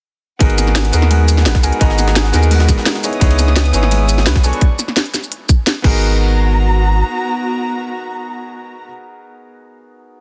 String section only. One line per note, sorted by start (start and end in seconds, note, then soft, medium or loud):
0.40 3.01 F#5 medium
3.04 4.43 B4 medium
3.04 4.43 D#6 medium
4.44 4.61 A4 medium
4.44 4.61 D5 medium
4.44 4.61 C#6 medium
5.84 8.85 B3 medium
5.84 8.85 F#4 medium
5.84 8.85 A#5 medium